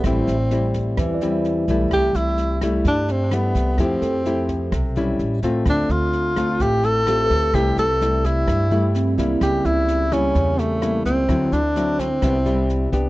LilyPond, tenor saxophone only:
\new Staff \with { instrumentName = "Tenor saxophone" } { \time 4/4 \key c \major \tempo 4 = 128 c'2 r2 | g'8 e'4 r8 d'8 c'8 b4 | c'2 r2 | d'8 f'4. g'8 a'4. |
g'8 a'4 e'4. r4 | g'8 e'4 cis'4 a4 c'8~ | c'8 d'4 c'2 r8 | }